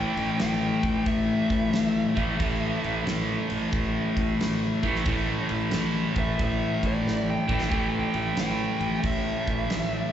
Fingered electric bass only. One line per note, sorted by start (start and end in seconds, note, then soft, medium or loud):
0.17 0.33 A1 medium
0.42 0.71 A1 medium
0.84 0.99 A1 medium
1.07 1.37 A1 medium
1.50 1.66 A1 medium
1.74 2.04 A1 medium
2.17 2.33 A1 medium
2.40 2.70 A1 medium
2.85 3.00 A1 medium
3.07 3.37 A1 medium
3.52 3.67 A1 medium
3.74 4.03 A1 medium
4.17 4.33 A1 medium
4.41 4.70 A1 medium
4.84 4.99 A1 medium
5.07 5.36 A1 loud
5.52 5.66 A1 medium
5.74 6.03 A1 medium
6.16 6.32 A1 medium
6.40 6.69 A1 medium
6.83 6.98 A1 medium
7.05 7.35 A1 medium
7.50 7.65 A1 medium
7.72 8.02 A1 loud
8.15 8.30 A1 medium
8.37 8.67 A1 medium
8.81 8.96 A1 medium
9.04 9.34 A1 medium
9.48 9.64 A1 medium
9.70 10.00 A1 medium